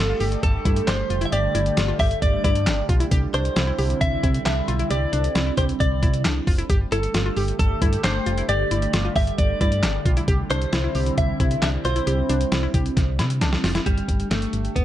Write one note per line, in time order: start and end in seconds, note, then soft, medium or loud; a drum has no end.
0.00 0.14 G1 loud
0.00 6.66 D3 medium
0.00 6.66 G3 medium
0.00 3.08 A3 medium
0.00 3.08 G4 medium
0.00 0.39 A4 medium
0.09 0.15 F4 medium
0.20 0.36 G1 loud
0.20 0.32 G4 medium
0.20 open hi-hat soft
0.32 closed hi-hat soft
0.43 0.59 G1 loud
0.43 0.89 A4 medium
0.43 kick loud
0.43 closed hi-hat medium
0.65 0.81 G2 medium
0.65 0.77 E4 medium
0.65 kick medium
0.65 closed hi-hat medium
0.76 closed hi-hat medium
0.88 1.03 G1 loud
0.88 0.99 D4 medium
0.88 1.25 C5 loud
0.88 snare loud
0.88 clap medium
0.88 closed hi-hat medium
1.10 1.26 F1 loud
1.10 1.16 F4 medium
1.10 closed hi-hat medium
1.21 1.27 E4 medium
1.21 closed hi-hat medium
1.25 1.32 E5 medium
1.32 1.48 G1 loud
1.32 1.44 G4 loud
1.32 1.99 D5 loud
1.32 closed hi-hat medium
1.55 1.71 G1 loud
1.55 1.66 E4 medium
1.55 closed hi-hat medium
1.66 closed hi-hat medium
1.77 1.93 G1 loud
1.77 1.83 F4 medium
1.77 snare loud
1.77 closed hi-hat medium
1.88 1.94 F4 medium
1.99 2.15 G1 loud
1.99 2.11 G4 medium
1.99 2.22 E5 loud
1.99 kick loud
1.99 open hi-hat medium
2.11 closed hi-hat soft
2.22 2.38 G1 loud
2.22 2.43 D5 loud
2.22 kick loud
2.22 closed hi-hat medium
2.44 2.68 G2 loud
2.44 2.56 E4 medium
2.44 2.86 D5 loud
2.44 kick medium
2.44 closed hi-hat medium
2.55 closed hi-hat medium
2.67 2.82 G1 loud
2.67 2.78 D4 medium
2.67 snare loud
2.67 clap medium
2.67 closed hi-hat medium
2.89 3.05 B1 medium
2.89 2.95 F4 medium
2.89 kick loud
2.89 closed hi-hat medium
3.00 3.06 E4 medium
3.00 closed hi-hat medium
3.11 3.27 C2 loud
3.11 6.66 C4 medium
3.11 6.66 E4 medium
3.11 3.23 G4 loud
3.11 kick loud
3.11 closed hi-hat medium
3.34 3.50 C2 loud
3.34 3.45 D4 medium
3.34 4.01 C5 loud
3.34 closed hi-hat medium
3.45 closed hi-hat medium
3.56 3.72 C2 loud
3.56 3.62 E4 medium
3.56 snare loud
3.56 closed hi-hat medium
3.67 3.73 E4 medium
3.78 3.94 C2 loud
3.78 3.90 G4 medium
3.78 open hi-hat medium
3.90 closed hi-hat soft
4.01 4.17 C2 loud
4.01 4.43 E5 loud
4.01 kick loud
4.01 closed hi-hat medium
4.23 4.39 C3 loud
4.23 4.35 E4 medium
4.23 kick medium
4.23 closed hi-hat medium
4.34 closed hi-hat medium
4.46 4.61 C2 loud
4.46 4.57 D4 medium
4.46 4.90 E5 loud
4.46 snare loud
4.46 clap medium
4.46 closed hi-hat medium
4.68 4.84 B1 medium
4.68 4.74 F4 medium
4.68 closed hi-hat medium
4.79 4.85 E4 medium
4.79 closed hi-hat medium
4.90 5.06 C2 loud
4.90 5.02 G4 loud
4.90 5.54 D5 medium
4.90 closed hi-hat medium
5.13 5.29 C2 loud
5.13 5.24 D4 medium
5.13 closed hi-hat medium
5.24 closed hi-hat medium
5.35 5.51 C2 loud
5.35 5.41 E4 medium
5.35 snare loud
5.35 closed hi-hat medium
5.46 5.52 E4 medium
5.57 5.73 C2 loud
5.57 5.69 G4 medium
5.57 5.64 C5 medium
5.57 kick medium
5.57 closed hi-hat medium
5.69 closed hi-hat soft
5.80 6.04 C2 loud
5.80 6.22 D5 medium
5.80 kick loud
5.80 closed hi-hat medium
6.03 6.26 C3 loud
6.03 6.14 E4 medium
6.03 kick loud
6.03 closed hi-hat medium
6.14 closed hi-hat medium
6.25 6.41 C2 loud
6.25 6.37 D4 medium
6.25 snare loud
6.25 clap medium
6.25 closed hi-hat medium
6.47 6.63 F1 medium
6.47 6.53 F4 medium
6.47 kick loud
6.47 open hi-hat medium
6.58 6.64 E4 medium
6.58 closed hi-hat medium
6.70 6.85 G1 loud
6.70 13.82 D3 medium
6.70 13.82 G3 medium
6.70 10.24 A3 medium
6.70 6.81 G4 loud
6.70 10.24 G4 medium
6.70 kick loud
6.70 closed hi-hat medium
6.92 7.08 G1 loud
6.92 7.04 E4 medium
6.92 7.55 A4 medium
6.92 closed hi-hat medium
7.03 closed hi-hat medium
7.14 7.30 G1 loud
7.14 7.20 F4 medium
7.14 snare loud
7.14 closed hi-hat medium
7.26 7.32 F4 medium
7.37 7.52 G1 loud
7.37 7.48 G4 medium
7.37 open hi-hat medium
7.48 closed hi-hat soft
7.59 7.75 G1 loud
7.59 8.01 A4 medium
7.59 kick loud
7.59 closed hi-hat medium
7.82 7.97 G2 medium
7.82 7.93 E4 medium
7.82 kick loud
7.82 closed hi-hat medium
7.93 closed hi-hat medium
8.04 8.20 G1 loud
8.04 8.16 D4 medium
8.04 8.49 C5 medium
8.04 snare loud
8.04 clap medium
8.04 closed hi-hat medium
8.26 8.42 F1 medium
8.26 8.32 F4 medium
8.26 closed hi-hat medium
8.38 8.43 E4 medium
8.38 closed hi-hat medium
8.49 8.65 G1 loud
8.49 8.60 G4 loud
8.49 9.16 D5 loud
8.49 closed hi-hat medium
8.71 8.87 G1 loud
8.71 8.83 E4 medium
8.71 closed hi-hat medium
8.82 closed hi-hat medium
8.93 9.09 G1 loud
8.93 8.99 F4 medium
8.93 snare loud
8.93 closed hi-hat medium
9.05 9.11 F4 medium
9.16 9.32 G1 loud
9.16 9.28 G4 medium
9.16 9.38 E5 loud
9.16 kick loud
9.16 open hi-hat medium
9.27 closed hi-hat soft
9.38 9.54 G1 loud
9.38 9.60 D5 loud
9.38 kick loud
9.38 closed hi-hat medium
9.61 9.85 G2 loud
9.61 9.72 E4 medium
9.61 10.03 D5 medium
9.61 kick medium
9.61 closed hi-hat medium
9.72 closed hi-hat medium
9.83 9.99 G1 loud
9.83 9.95 D4 medium
9.83 snare loud
9.83 clap medium
9.83 closed hi-hat medium
10.05 10.21 B1 medium
10.05 10.11 F4 medium
10.05 kick loud
10.05 closed hi-hat medium
10.17 10.23 E4 medium
10.17 closed hi-hat medium
10.28 10.44 C2 loud
10.28 13.83 C4 medium
10.28 13.83 E4 medium
10.28 10.40 G4 loud
10.28 kick loud
10.28 closed hi-hat medium
10.50 10.66 C2 loud
10.50 10.62 D4 medium
10.50 11.14 C5 loud
10.50 closed hi-hat medium
10.62 closed hi-hat medium
10.73 10.88 C2 loud
10.73 10.79 E4 medium
10.73 snare loud
10.73 closed hi-hat medium
10.84 10.90 E4 medium
10.95 11.11 C2 loud
10.95 11.07 G4 medium
10.95 open hi-hat medium
11.06 closed hi-hat soft
11.18 11.33 C2 loud
11.18 11.61 E5 loud
11.18 kick loud
11.18 closed hi-hat medium
11.40 11.56 C3 loud
11.40 11.52 E4 medium
11.40 kick loud
11.40 closed hi-hat medium
11.51 closed hi-hat medium
11.62 11.78 C2 loud
11.62 11.74 D4 medium
11.62 11.69 E5 loud
11.62 snare loud
11.62 clap medium
11.62 closed hi-hat medium
11.85 12.00 B1 medium
11.85 11.91 F4 medium
11.85 12.70 C5 medium
11.85 closed hi-hat medium
11.96 12.02 E4 medium
11.96 closed hi-hat medium
12.07 12.23 C2 loud
12.07 12.19 G4 loud
12.07 closed hi-hat medium
12.29 12.45 C2 loud
12.29 12.41 D4 medium
12.29 closed hi-hat medium
12.41 closed hi-hat medium
12.52 12.68 C2 loud
12.52 12.58 E4 medium
12.52 snare loud
12.52 closed hi-hat medium
12.63 12.69 E4 medium
12.74 12.90 C2 loud
12.74 12.86 G4 medium
12.74 kick loud
12.74 closed hi-hat medium
12.86 closed hi-hat soft
12.97 13.21 C2 loud
12.97 kick medium
12.97 snare medium
12.97 closed hi-hat medium
13.19 13.43 C3 loud
13.19 13.31 E4 medium
13.19 snare medium
13.19 closed hi-hat medium
13.30 closed hi-hat medium
13.41 13.57 C2 loud
13.41 13.53 D4 medium
13.41 snare medium
13.41 closed hi-hat medium
13.53 snare medium
13.64 13.80 F1 medium
13.64 13.70 F4 medium
13.64 snare loud
13.64 open hi-hat medium
13.75 13.81 E4 medium
13.75 snare medium
13.75 closed hi-hat medium
13.86 14.02 G1 loud
13.86 14.85 D3 medium
13.86 14.85 G3 medium
13.86 14.31 G3 medium
13.86 14.85 A3 medium
13.86 14.85 G4 medium
13.86 kick loud
13.86 closed hi-hat medium
13.98 closed hi-hat soft
14.08 14.24 G1 loud
14.08 kick medium
14.08 closed hi-hat medium
14.20 closed hi-hat soft
14.31 14.47 G1 loud
14.31 14.77 A3 medium
14.31 snare loud
14.31 closed hi-hat medium
14.42 closed hi-hat medium
14.53 14.69 G1 loud
14.53 closed hi-hat medium
14.65 closed hi-hat soft
14.76 14.85 G1 loud
14.76 14.85 B3 medium
14.76 kick medium
14.76 closed hi-hat medium